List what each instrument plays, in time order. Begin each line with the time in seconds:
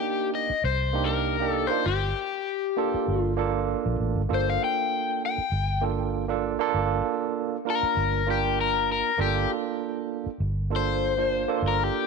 Already playing: tine electric piano A#3 D4 D#4 G4, overdriven electric guitar G4
0.35 overdriven electric guitar D#5
0.50 muted fingered electric bass stroke
0.64 fingered electric bass C2, overdriven electric guitar C5
0.93 tine electric piano A#3 D4 D#4 G4
1.05 overdriven electric guitar A#4
1.40 tine electric piano A#3 D4 D#4 G4
1.50 overdriven electric guitar A4
1.67 tine electric piano A#3 D4, overdriven electric guitar C5
1.72 tine electric piano D#4 F4
1.86 fingered electric bass G1, overdriven electric guitar G4
2.77 tine electric piano A#3 D4 F4 A4
2.94 muted fingered electric bass stroke
3.08 fingered electric bass G1
3.22 overdriven electric guitar F4
3.37 tine electric piano A#3 D4 F4 A4
3.86 fingered electric bass A#1
4.00 fingered electric bass A1
4.16 fingered electric bass G1
4.29 fingered electric bass G1, tine electric piano A#3 D4 F4 A4
4.34 overdriven electric guitar C5
4.50 overdriven electric guitar F5
4.64 overdriven electric guitar G5
5.26 overdriven electric guitar G5
5.38 muted fingered electric bass stroke
5.52 fingered electric bass G1
5.82 tine electric piano A#3 D4 F4 A4
6.28 tine electric piano A#3 D4 F4 A4
6.59 tine electric piano A#3 D4 F4 A4
6.74 fingered electric bass G1
7.65 tine electric piano A#3 D4 F4 A#4
7.70 overdriven electric guitar A#4
7.83 muted fingered electric bass stroke
7.97 fingered electric bass G1
8.26 tine electric piano A#3 D4 F4 A#4
8.30 overdriven electric guitar G4
8.61 overdriven electric guitar A#4
8.92 overdriven electric guitar A#4
9.18 fingered electric bass G1, tine electric piano A#3 D4 F4 A4, overdriven electric guitar G4
10.26 muted fingered electric bass stroke
10.40 fingered electric bass G1
10.70 tine electric piano A#3 D4 F4 A4
10.76 overdriven electric guitar C5
11.17 tine electric piano A#3 D4 F4 C5
11.48 tine electric piano A#3 D4 F4 A4
11.62 fingered electric bass G1
11.68 overdriven electric guitar A#4
11.84 overdriven electric guitar G4